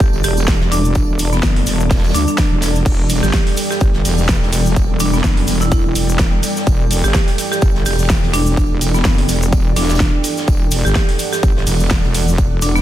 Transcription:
Already playing: G3 E4 G4 A4 D5 E5 A5
0.00 G1, kick, tambourine, cabasa
0.13 tambourine
0.24 E1 G4, open hi-hat, cabasa
0.37 tambourine, cabasa
0.48 kick, snare, tambourine, cabasa
0.61 E1, snare
0.72 D4, open hi-hat, tambourine, cabasa
0.85 cabasa
0.95 kick, tambourine, cabasa
1.09 E1
1.19 open hi-hat, tambourine, cabasa
1.32 B3, snare, cabasa
1.43 F#1 B3, kick, snare, tambourine, cabasa
1.56 snare, open hi-hat
1.67 E1, snare, open hi-hat, tambourine, cabasa
1.80 cabasa
1.91 kick, snare, tambourine, cabasa
1.97 snare, tambourine
2.04 snare, tambourine
2.09 snare, tambourine
2.14 D2 D4, open hi-hat, tambourine, cabasa
2.28 D4, cabasa
2.37 kick, snare, open hi-hat, tambourine, cabasa
2.52 E1
2.62 snare, open hi-hat, tambourine, cabasa
2.75 snare, cabasa
2.86 E1 A4, kick, crash, ride, tambourine, cabasa
3.10 G5, open hi-hat, ride, tambourine, cabasa
3.23 G1 G4, snare, cabasa
3.33 G4, kick, snare, ride, tambourine, cabasa
3.46 snare, open hi-hat
3.57 open hi-hat, ride, tambourine, cabasa
3.71 G4, snare, cabasa
3.80 G1, kick, ride, tambourine, cabasa
3.93 snare
4.05 E1, open hi-hat, ride, cabasa
4.18 cabasa
4.29 kick, snare, ride, tambourine, cabasa
4.42 E1, snare
4.52 open hi-hat, ride, tambourine, cabasa
4.66 cabasa
4.76 kick, ride, tambourine, cabasa
4.90 E1
5.00 D4, open hi-hat, ride, tambourine, cabasa
5.13 B3, snare, cabasa
5.24 F#1, kick, snare, ride, tambourine, cabasa
5.36 snare, open hi-hat
5.47 E1, snare, open hi-hat, ride, tambourine, cabasa
5.61 E4, cabasa
5.72 E4, kick, ride, tambourine, cabasa
5.85 E1
5.95 E1, open hi-hat, ride, tambourine, cabasa
6.09 cabasa
6.19 kick, snare, ride, tambourine, cabasa
6.43 open hi-hat, ride, tambourine, cabasa
6.56 snare, cabasa
6.67 E1 G4, kick, ride, tambourine, cabasa
6.91 open hi-hat, ride, tambourine, cabasa
7.04 G1 G4, snare, cabasa
7.13 G4, kick, snare, ride, tambourine, cabasa
7.27 snare, open hi-hat
7.38 open hi-hat, ride, tambourine, cabasa
7.51 G4, snare, cabasa
7.62 G1, kick, ride, tambourine, cabasa
7.75 snare
7.86 E1 G4, open hi-hat, ride, cabasa
7.99 cabasa
8.09 kick, snare, ride, tambourine, cabasa
8.23 E1, snare
8.34 D4, open hi-hat, ride, tambourine, cabasa
8.46 cabasa
8.57 kick, ride, tambourine, cabasa
8.71 E1
8.81 open hi-hat, ride, tambourine, cabasa
8.94 B3, snare, cabasa
9.04 F#1 B3, kick, snare, ride, tambourine, cabasa
9.18 snare, open hi-hat
9.29 E1, snare, open hi-hat, ride, tambourine, cabasa
9.42 cabasa
9.52 kick, ride, tambourine, cabasa
9.76 E1 D4, snare, open hi-hat, ride, tambourine, cabasa
9.83 snare, tambourine
9.89 D4, snare, tambourine, cabasa
9.95 snare, tambourine
10.00 kick, snare, ride, cabasa
10.23 open hi-hat, ride, tambourine, cabasa
10.37 snare, cabasa
10.48 E1 A4, kick, ride, tambourine, cabasa
10.71 F#5, open hi-hat, ride, tambourine, cabasa
10.85 G1 G4, snare, cabasa
10.95 G4, kick, snare, ride, tambourine, cabasa
11.09 snare, open hi-hat
11.19 open hi-hat, ride, tambourine, cabasa
11.33 G4, snare, cabasa
11.43 G1, kick, ride, tambourine, cabasa
11.57 snare
11.67 E1, open hi-hat, ride, cabasa
11.80 cabasa
11.90 kick, snare, ride, tambourine, cabasa
12.04 E1, snare
12.14 open hi-hat, ride, tambourine, cabasa
12.28 cabasa
12.38 kick, ride, tambourine, cabasa
12.52 E1
12.62 D4, open hi-hat, ride, tambourine, cabasa
12.76 B3, snare, cabasa

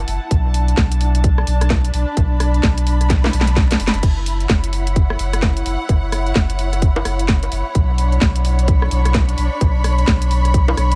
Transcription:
Already playing: E4 F#5 A5
0.08 F#1, open hi-hat
0.31 B1 D4, kick, closed hi-hat
0.54 open hi-hat
0.68 closed hi-hat
0.77 B1, kick, snare
0.92 closed hi-hat
1.01 open hi-hat
1.15 closed hi-hat
1.24 kick, closed hi-hat
1.38 cross-stick
1.47 B1, open hi-hat
1.61 cross-stick, closed hi-hat
1.70 kick, snare, high bongo
1.85 B5, closed hi-hat
1.94 B1, open hi-hat
2.17 B1, kick, closed hi-hat
2.40 cross-stick, open hi-hat
2.54 closed hi-hat
2.63 B1, kick, snare
2.78 closed hi-hat
2.87 open hi-hat
3.01 cross-stick, closed hi-hat
3.10 kick, snare, closed hi-hat
3.24 snare, high bongo
3.33 B1, open hi-hat
3.41 snare
3.47 closed hi-hat
3.57 kick, snare
3.71 snare, closed hi-hat
3.80 F#1, open hi-hat
3.88 snare
3.94 F#1, closed hi-hat
4.03 F#1 E4 B5, kick, closed hi-hat, crash
4.26 open hi-hat
4.40 C#5, closed hi-hat
4.46 F#1 F#5, kick, snare
4.64 closed hi-hat
4.73 open hi-hat
4.87 closed hi-hat
4.96 kick, closed hi-hat
5.10 cross-stick
5.19 F#1, open hi-hat
5.33 cross-stick, closed hi-hat
5.42 kick, snare, high bongo
5.57 closed hi-hat
5.66 F#1, open hi-hat
5.89 F#1, kick, closed hi-hat
6.12 cross-stick, open hi-hat
6.27 closed hi-hat
6.36 F#1, kick, snare
6.50 closed hi-hat
6.59 open hi-hat
6.73 cross-stick, closed hi-hat
6.82 kick, closed hi-hat
6.96 high bongo
7.05 F#1, cross-stick, open hi-hat
7.19 closed hi-hat
7.29 kick, snare
7.43 closed hi-hat
7.52 F#1, open hi-hat
7.75 B1 D4, kick, closed hi-hat
7.98 open hi-hat
8.12 closed hi-hat
8.21 B1, kick, snare
8.36 closed hi-hat
8.45 open hi-hat
8.59 closed hi-hat
8.64 B5 C#6, kick, closed hi-hat
8.82 cross-stick
8.91 B1, open hi-hat
9.05 cross-stick, closed hi-hat
9.15 kick, snare, high bongo
9.29 closed hi-hat
9.38 B1, open hi-hat
9.61 B1, kick, closed hi-hat
9.84 cross-stick, open hi-hat
9.98 closed hi-hat
10.08 B1, kick, snare
10.22 closed hi-hat
10.31 open hi-hat
10.45 cross-stick, closed hi-hat
10.54 kick, closed hi-hat
10.68 high bongo
10.77 B1, cross-stick, open hi-hat
10.92 closed hi-hat

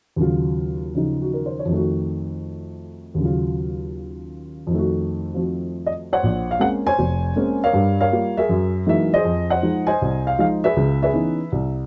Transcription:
0.16 D#2 C#3 F#3
0.22 F4
0.95 C#3 F3 D#4
1.22 F#4
1.33 A#4
1.46 C5
1.59 C#5
1.65 F2 D#3
1.72 A3 F#4
3.14 D#2
3.18 C#3 F#3
3.25 F4
4.67 F2
4.71 D#3 A3
4.78 F#4
5.34 F3 C4 F#4
5.86 D#5
6.13 C5 C#5 F#5
6.23 A#1
6.51 F5
6.59 G#3 A#3 C4 C#4 F#5
6.87 C5 C#5 G#5
6.99 F1
7.36 G#3 A#3 C4 C#4
7.64 A#4 C#5 F5
7.73 G2 G3
8.01 A#4 C#5 F5
8.12 G3 A#3 F4
8.37 G#4 A#4 E5
8.49 F#2
8.86 E3 F#3 G#3 A#3 D#4 E5
9.14 G#4 C5 D#5
9.24 F2
9.50 C5 D#5 F#5
9.62 F3 G#3 D#4
9.87 C5 D#5 G#5
10.02 C2
10.27 F5
10.38 F3 G#3 D#4 F5
10.64 G#4 B4 E5
10.76 C#2 C#3
11.03 G#4 B4 E5
11.13 E3 B3 C#4 D#4
11.52 C2

